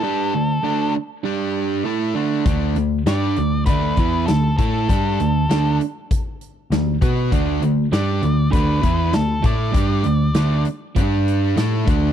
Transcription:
<<
  \new Staff \with { instrumentName = "Lead electric guitar" } { \time 4/4 \key g \lydian \tempo 4 = 99 a'4. r2 r8 | r4 d''4 b'4 a'8 a'8~ | a'4. r2 r8 | r4 d''4 b'4 a'8 d''8~ |
d''4. r2 r8 | }
  \new Staff \with { instrumentName = "Distorted electric guitar" } { \time 4/4 \key g \lydian <g d' g'>8 <d a>8 <d a d'>8 r8 <g d' g'>4 <a e' a'>8 <d a d'>8 | <d a d'>8 <d a>8 <g d' g'>8 <d a>8 <d a d'>8 <e b e'>8 <d a>8 <a e' a'>8 | <g d' g'>8 <d a>8 <d a d'>8 r4. <d a>8 <b fis' b'>8 | <d a d'>8 <d a>8 <g d' g'>8 <d a>8 <d a d'>8 <e b e'>8 <d a>8 <a e' a'>8 |
<g d' g'>8 <d a>8 <d a d'>8 r8 <g d' g'>4 <a e' a'>8 <d a d'>8 | }
  \new Staff \with { instrumentName = "Overdriven electric guitar" } { \time 4/4 \key g \lydian <g d' g'>8 <d a>8 <d a d'>8 r8 <g d' g'>4 <a e' a'>8 <d a d'>8 | <d a d'>8 <d a>8 <g d' g'>8 <d a>8 <d a d'>8 <e b e'>8 <d a>8 <a e' a'>8 | <g d' g'>8 <d a>8 <d a d'>8 r4. <d a>8 <b fis' b'>8 | <d a d'>8 <d a>8 <g d' g'>8 <d a>8 <d a d'>8 <e b e'>8 <d a>8 <a e' a'>8 |
<g d' g'>8 <d a>8 <d a d'>8 r8 <g d' g'>4 <a e' a'>8 <d a d'>8 | }
  \new Staff \with { instrumentName = "Picked electric bass" } { \clef bass \time 4/4 \key g \lydian r1 | d,8 d,8 g,8 d,8 d,8 e,8 d,8 a,8 | g,8 d,8 d,8 r4. d,8 b,8 | d,8 d,8 g,8 d,8 d,8 e,8 d,8 a,8 |
g,8 d,8 d,8 r8 g,4 a,8 d,8 | }
  \new DrumStaff \with { instrumentName = "Drums" } \drummode { \time 4/4 r4 r4 r4 r4 | <hh bd>8 hh8 <hh sn>8 hh8 <hh bd>8 <hh bd>8 <hh sn>8 <hh bd>8 | <hh bd>8 hh8 <hh sn>8 hh8 <hh bd>8 hh8 <hh sn>8 <hh bd>8 | <hh bd>8 hh8 <hh sn>8 hh8 <hh bd>8 <hh bd>8 <hh sn>8 <hh bd>8 |
<hh bd>8 hh8 <hh sn>8 hh8 <hh bd>8 hh8 <hh sn>8 <hh bd>8 | }
>>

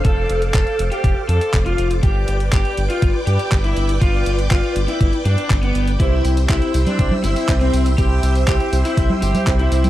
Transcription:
<<
  \new Staff \with { instrumentName = "String machine" } { \time 4/4 \key g \mixolydian \tempo 4 = 121 << { d'''1~ | d'''1~ | d'''1 | e'''1~ |
e'''1 | } \\ { <a' c'' f''>1 | <b' d'' g''>1~ | <b' d'' g''>1 | <c'' e'' g''>1~ |
<c'' e'' g''>1 | } >> }
  \new Staff \with { instrumentName = "Analog polysynth" } { \time 4/4 \key g \mixolydian r1 | r1 | r1 | <c' e' g' c''>4. <c' e' g' c''>4. <c' e' g' c''>4 |
<c' e' g' c''>4. <c' e' g' c''>4. <c' e' g' c''>4 | }
  \new Staff \with { instrumentName = "Lead electric guitar" } { \time 4/4 \key g \mixolydian a'8. r16 a'8 r16 g'8 r16 a'8 r16 f'8 r16 | g'8. r16 g'8 r16 f'8 r16 g'8 r16 e'8 r16 | f'8. r16 f'8 r16 e'8 r16 d'8 r16 b8 r16 | e'8. r16 e'8 r16 d'8 r16 e'8 r16 c'8 r16 |
g'8. r16 g'8 r16 e'8 r16 g'8 r16 e'8 r16 | }
  \new Staff \with { instrumentName = "Analog synth bass" } { \clef bass \time 4/4 \key g \mixolydian f,,8 f,,8 f,,8 f,,8 f,,8 f,8 f,,8 f,,8 | g,,8 g,,8 g,,8 g,,8 g,,8 g,8 g,,8 g,,8 | g,,8 g,,8 g,,8 g,,8 g,,8 g,8 g,,8 g,,8 | c,8 c,8 c,8 c,8 c,8 g,,8 c,8 c,8 |
c,8 c,8 c,8 c,8 c,8 g,,8 c,8 c,8 | }
  \new DrumStaff \with { instrumentName = "Drums" } \drummode { \time 4/4 <hh bd>8 hh16 hh16 <hc hh bd>16 hh16 hh16 hh16 <hh bd>8 hh16 hh16 <hc hh bd>16 hh16 hh16 hh16 | <hh bd>8 hh16 hh16 <hc hh bd>16 hh16 hh16 hh16 <hh bd>8 hh16 hh16 <hc hh bd>16 hh16 hh16 hh16 | <hh bd>8 hh16 hh16 <hc hh bd>16 hh16 hh16 hh16 <hh bd>16 hh16 hh16 hh16 <hc hh bd>16 hh16 hh16 hh16 | <hh bd tamb>8 <hh tamb>16 <hh tamb>16 <hc hh bd tamb>16 hh16 <hh tamb>16 <cgho hh tamb>16 <hh bd tamb>16 cgho16 <hh tamb>16 <hh tamb>16 <hc hh bd tamb>16 hh16 <hh tamb>16 <hh tamb>16 |
<hh bd tamb>8 <hh tamb>16 <hh tamb>16 <hc hh bd tamb>16 hh16 <hh tamb>16 <hh tamb>16 <hh bd tamb>16 cgho16 <hh tamb>16 <cgho hh tamb>16 <hc hh bd tamb>16 hh16 <hh tamb>16 <cgho hh tamb>16 | }
>>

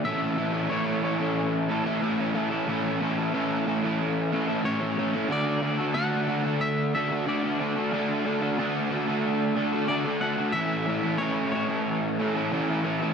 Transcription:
<<
  \new Staff \with { instrumentName = "Clean electric guitar" } { \time 4/4 \key a \major \tempo 4 = 91 e''4 cis''8 cis''2 r8 | r2. cis''4 | d''4 fis''4 e''8 e''8 d''8. r16 | r2. d''8 fis''8 |
e''4 cis''8 cis''2 r8 | }
  \new Staff \with { instrumentName = "Overdriven electric guitar" } { \time 4/4 \key a \major <a, e a cis' e' a'>8 <a cis' e' a'>16 <a cis' e' a'>16 <a, e a cis' e' a'>8 <a cis' e' a'>16 <a cis' e' a'>8. <a cis' e' a'>16 <a cis' e' a'>16 <a, e a cis' e' a'>16 <a cis' e' a'>16 <a cis' e' a'>16 <a cis' e' a'>16 | <a, e a cis' e' a'>8 <a cis' e' a'>16 <a cis' e' a'>16 <a, e a cis' e' a'>8 <a cis' e' a'>16 <a cis' e' a'>8. <a cis' e' a'>16 <a cis' e' a'>16 <a, e a cis' e' a'>16 <a cis' e' a'>16 <a cis' e' a'>16 <a cis' e' a'>16 | <d a d' fis' a'>8 <a d' fis' a'>16 <d' fis' a'>16 <d a d' fis' a'>8 <a d' fis' a'>16 <d' fis' a'>8. <a d' fis' a'>16 <d' fis' a'>16 <d a d' fis' a'>16 <d' fis' a'>16 <a d' fis' a'>16 <d' fis' a'>16 | <d a d' fis' a'>8 <a d' fis' a'>16 <d' fis' a'>16 <d a d' fis' a'>8 <a d' fis' a'>16 <d' fis' a'>8. <a d' fis' a'>16 <d' fis' a'>16 <d a d' fis' a'>16 <d' fis' a'>16 <a d' fis' a'>16 <d' fis' a'>16 |
<a, e a cis' e' a'>8 <a cis' e' a'>16 <a cis' e' a'>16 <a, e a cis' e' a'>8 <a cis' e' a'>16 <a cis' e' a'>8. <a cis' e' a'>16 <a cis' e' a'>16 <a, e a cis' e' a'>16 <a cis' e' a'>16 <a cis' e' a'>16 <a cis' e' a'>16 | }
>>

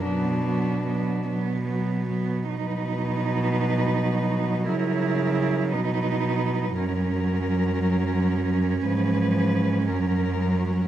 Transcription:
<<
  \new Staff \with { instrumentName = "Cello" } { \time 6/8 \key b \minor \tempo 4. = 57 d'4. r4. | \key b \major b'2. | ais'4. b'4. | ais'2. |
b'4. ais'4. | }
  \new Staff \with { instrumentName = "Cello" } { \time 6/8 \key b \minor b8 b8 b8 b8 b8 b8 | \key b \major dis'2. | e'4. dis'4. | cis'2.~ |
cis'2. | }
  \new Staff \with { instrumentName = "Cello" } { \clef bass \time 6/8 \key b \minor fis8 fis8 fis8 fis8 fis8 fis8 | \key b \major fis2.~ | fis2. | fis2. |
eis4. fis4. | }
  \new Staff \with { instrumentName = "Cello" } { \clef bass \time 6/8 \key b \minor b,4. b,4. | \key b \major b,2. | cis4. b,4. | fis,2. |
gis,4. fis,4. | }
>>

